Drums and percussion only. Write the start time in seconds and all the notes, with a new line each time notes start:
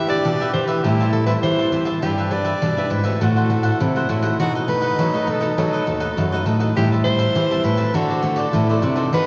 0.08 pandeiro
0.25 pandeiro
0.41 pandeiro
0.54 pandeiro
0.68 pandeiro
0.84 pandeiro
1.00 pandeiro
1.13 pandeiro
1.27 pandeiro
1.43 pandeiro
1.59 pandeiro
1.72 pandeiro
1.85 pandeiro
2.02 pandeiro
2.18 pandeiro
2.31 pandeiro
2.45 pandeiro
2.62 pandeiro
2.77 pandeiro
2.90 pandeiro
3.04 pandeiro
3.21 pandeiro
3.36 pandeiro
3.50 pandeiro
3.63 pandeiro
3.80 pandeiro
3.96 pandeiro
4.09 pandeiro
4.23 pandeiro
4.39 pandeiro
4.55 pandeiro
4.68 pandeiro
4.81 pandeiro
4.99 pandeiro
5.14 pandeiro
5.27 pandeiro
5.41 pandeiro
5.58 pandeiro
5.74 pandeiro
5.87 pandeiro
6.00 pandeiro
6.18 pandeiro
6.34 pandeiro
6.46 pandeiro
6.60 pandeiro
6.77 pandeiro
6.93 pandeiro
7.05 pandeiro
7.19 pandeiro
7.35 pandeiro
7.51 pandeiro
7.64 pandeiro
7.77 pandeiro
7.94 pandeiro
8.10 pandeiro
8.23 pandeiro
8.36 pandeiro
8.53 pandeiro
8.69 pandeiro
8.82 pandeiro
8.96 pandeiro
9.13 pandeiro